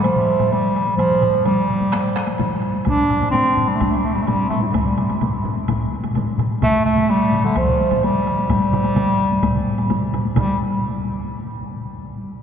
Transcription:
0.03 0.53 F3 medium
0.03 taiko high medium
0.03 high woodblock medium
0.16 taiko low-mid medium
0.16 taiko mid medium
0.40 taiko low-mid medium
0.40 taiko mid medium
0.40 taiko high soft
0.40 high woodblock soft
0.52 0.96 G3 medium
0.52 taiko high medium
0.52 high woodblock soft
0.76 high woodblock soft
0.87 taiko high soft
0.96 1.47 F3 medium
0.96 taiko low-mid medium
0.96 taiko mid medium
0.96 taiko high medium
0.96 high woodblock medium
1.10 taiko low-mid medium
1.10 taiko mid medium
1.22 taiko low-mid medium
1.22 taiko mid medium
1.22 high woodblock soft
1.34 taiko high soft
1.34 high woodblock soft
1.45 2.63 G3 medium
1.45 taiko low-mid medium
1.45 taiko mid loud
1.45 taiko high medium
1.45 high woodblock soft
1.69 taiko low-mid medium
1.69 taiko mid medium
1.81 taiko low-mid medium
1.81 taiko mid medium
1.81 taiko high soft
1.92 taiko rim medium
1.92 taiko high medium
1.92 high woodblock medium
2.16 taiko rim medium
2.16 taiko high soft
2.27 taiko high medium
2.27 high woodblock soft
2.38 taiko low-mid medium
2.38 taiko mid loud
2.38 taiko high medium
2.38 high woodblock soft
2.62 high woodblock soft
2.75 taiko high soft
2.85 3.30 D4 medium
2.85 taiko medium
2.85 taiko low-mid medium
2.85 taiko mid medium
2.85 taiko high medium
2.85 high woodblock soft
3.10 taiko low-mid medium
3.10 taiko mid medium
3.10 high woodblock soft
3.21 taiko low-mid medium
3.21 taiko mid medium
3.21 taiko high soft
3.21 high woodblock soft
3.31 3.70 C4 medium
3.31 taiko low-mid loud
3.31 taiko mid medium
3.31 taiko high medium
3.31 high woodblock soft
3.57 taiko low-mid medium
3.57 taiko mid medium
3.68 3.76 G3 medium
3.68 taiko high medium
3.75 3.84 A3 medium
3.80 3.91 G3 medium
3.80 taiko medium
3.80 taiko low-mid medium
3.80 taiko mid medium
3.80 taiko high medium
3.80 high woodblock soft
3.90 3.99 A3 medium
3.97 4.06 G3 medium
4.04 4.15 A3 medium
4.04 taiko high soft
4.13 4.23 G3 medium
4.13 taiko low-mid medium
4.13 taiko mid medium
4.13 taiko high medium
4.13 high woodblock soft
4.22 4.27 A3 medium
4.26 4.48 G3 medium
4.26 taiko low-mid medium
4.26 taiko mid medium
4.26 taiko high medium
4.26 high woodblock soft
4.49 4.59 A3 medium
4.49 taiko low-mid loud
4.49 taiko mid medium
4.49 high woodblock soft
4.59 4.62 G2 soft
4.59 4.66 A2 soft
4.64 4.70 C3 soft
4.64 taiko high medium
4.71 4.73 D3 soft
4.71 4.77 F3 soft
4.71 taiko low-mid loud
4.71 taiko mid medium
4.71 high woodblock soft
4.75 5.22 G3 medium
4.75 taiko medium
4.75 taiko high medium
4.97 taiko low-mid medium
4.97 taiko mid medium
4.97 high woodblock soft
5.09 taiko low-mid medium
5.09 taiko mid medium
5.09 taiko high medium
5.09 high woodblock soft
5.21 taiko low-mid loud
5.21 taiko mid medium
5.21 taiko high medium
5.21 high woodblock soft
5.44 taiko low-mid medium
5.44 taiko mid medium
5.57 taiko high medium
5.67 taiko medium
5.67 taiko low-mid medium
5.67 taiko mid loud
5.67 taiko high medium
5.67 high woodblock medium
5.93 taiko high medium
6.03 taiko low-mid medium
6.03 taiko mid medium
6.03 taiko high medium
6.03 high woodblock soft
6.14 taiko low-mid medium
6.14 taiko mid loud
6.14 taiko high medium
6.14 high woodblock soft
6.38 taiko low-mid loud
6.38 taiko mid medium
6.38 high woodblock soft
6.50 taiko high soft
6.61 6.84 A3 loud
6.61 taiko loud
6.61 taiko low-mid loud
6.61 taiko mid loud
6.61 taiko high medium
6.61 high woodblock soft
6.85 7.11 A3 loud
6.85 taiko low-mid medium
6.85 taiko mid medium
6.85 high woodblock soft
6.97 taiko low-mid medium
6.97 taiko mid medium
6.97 taiko high medium
6.97 high woodblock soft
7.09 7.47 G3 medium
7.09 taiko high medium
7.09 high woodblock soft
7.32 taiko low-mid loud
7.32 taiko mid medium
7.45 7.58 D3 medium
7.45 taiko high medium
7.56 8.05 F3 medium
7.56 taiko loud
7.56 taiko high medium
7.56 high woodblock medium
7.68 taiko low-mid loud
7.68 taiko mid medium
7.80 taiko high medium
7.91 taiko low-mid loud
7.91 taiko mid medium
7.91 taiko high medium
7.91 high woodblock soft
8.03 8.50 G3 medium
8.03 taiko high medium
8.03 high woodblock soft
8.27 high woodblock soft
8.39 taiko high medium
8.49 9.87 G3 medium
8.49 taiko medium
8.49 taiko low-mid loud
8.49 taiko mid loud
8.49 taiko high medium
8.49 high woodblock medium
8.73 taiko low-mid medium
8.73 taiko mid loud
8.73 high woodblock soft
8.84 taiko high medium
8.84 high woodblock soft
8.96 taiko low-mid loud
8.96 taiko mid loud
8.96 taiko high medium
8.96 high woodblock soft
9.31 taiko high medium
9.43 taiko medium
9.43 taiko low-mid medium
9.43 taiko mid medium
9.43 taiko high medium
9.43 high woodblock medium
9.55 taiko low-mid medium
9.55 taiko mid medium
9.67 taiko low-mid medium
9.67 taiko mid medium
9.78 taiko low-mid medium
9.78 taiko mid medium
9.78 taiko high medium
9.78 high woodblock soft
9.89 taiko low-mid loud
9.89 taiko mid loud
9.89 taiko high medium
9.89 high woodblock soft
10.12 taiko low-mid loud
10.12 taiko mid loud
10.12 high woodblock soft
10.25 taiko high medium
10.36 10.58 G3 medium
10.36 taiko medium
10.36 taiko low-mid loud
10.36 taiko mid loud
10.36 taiko high medium
10.36 high woodblock medium

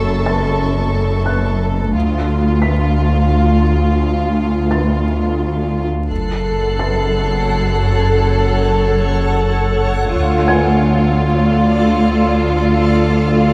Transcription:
0.00 1.91 F#1 soft
0.00 1.96 F#1 soft
0.00 1.91 F#2 soft
0.00 1.90 A4 soft
0.00 1.57 A5 soft
0.00 1.57 C#6 soft
0.00 0.23 E6 soft
0.00 0.56 G#6 soft
0.26 2.25 A5 soft
0.26 2.24 A6 soft
1.26 3.26 F#6 soft
1.94 5.85 D2 soft
1.94 6.09 D2 medium
1.94 5.86 D2 soft
1.94 5.86 F4 soft
2.62 4.67 B6 soft
4.71 6.06 A6 soft
6.10 10.17 F#1 medium
6.10 10.11 F#1 soft
6.10 10.11 F#2 soft
6.10 10.11 A4 soft
6.10 10.11 C#5 soft
6.10 10.11 F#5 soft
6.10 9.78 F#6 soft
6.10 9.11 C7 soft
6.79 8.78 A6 soft
10.15 13.53 D2 soft
10.15 13.53 D2 medium
10.15 13.53 F4 soft
10.15 13.53 A4 soft
10.15 13.53 D5 soft
10.15 13.53 F5 soft
10.48 12.44 G#5 soft
10.48 12.43 G#6 soft

